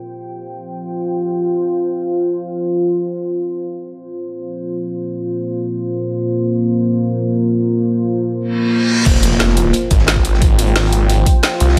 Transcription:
Already playing: F4 C5 G5
3.64 A#3 F4
8.38 reverse cymbal
9.06 F1 F4 C5 G5, kick, closed hi-hat, crash, impact
9.14 snare
9.22 snare, closed hi-hat
9.31 snare
9.39 F1, snare, closed hi-hat
9.48 snare
9.57 closed hi-hat
9.73 closed hi-hat
9.90 G#1, kick, closed hi-hat
9.98 snare
10.07 snare, closed hi-hat
10.16 kick
10.25 closed hi-hat
10.34 snare
10.42 kick, closed hi-hat
10.59 closed hi-hat
10.66 closed hi-hat
10.76 snare, closed hi-hat, open hi-hat
10.84 snare
10.93 closed hi-hat
11.10 closed hi-hat
11.26 kick, closed hi-hat
11.43 snare, closed hi-hat
11.60 C2, closed hi-hat
11.68 snare

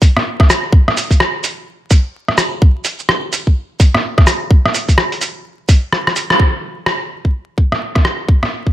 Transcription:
0.02 kick, closed hi-hat, cabasa
0.17 cross-stick
0.40 kick, cross-stick
0.50 cross-stick, closed hi-hat, cabasa
0.72 kick
0.88 cross-stick
0.97 closed hi-hat, cabasa
1.11 kick, closed hi-hat, cabasa
1.20 cross-stick
1.44 closed hi-hat, cabasa
1.91 kick, closed hi-hat, cabasa
2.28 cross-stick
2.38 cross-stick, closed hi-hat, cabasa
2.62 kick
2.85 closed hi-hat, cabasa
2.99 cabasa
3.09 cross-stick
3.33 closed hi-hat, cabasa
3.47 kick
3.80 kick, closed hi-hat, cabasa
3.94 cross-stick
4.18 kick, cross-stick
4.27 cross-stick, closed hi-hat, cabasa
4.51 kick
4.66 cross-stick
4.75 closed hi-hat, cabasa
4.89 kick, closed hi-hat, cabasa
4.98 cross-stick
5.12 closed hi-hat
5.21 closed hi-hat, cabasa
5.69 kick, closed hi-hat, cabasa
5.92 cross-stick
6.07 cross-stick
6.16 closed hi-hat, cabasa
6.30 cross-stick
6.40 kick
6.86 cross-stick
7.25 kick
7.58 kick
7.72 cross-stick
7.95 kick, cross-stick
8.05 cross-stick
8.29 kick
8.43 cross-stick
8.67 kick

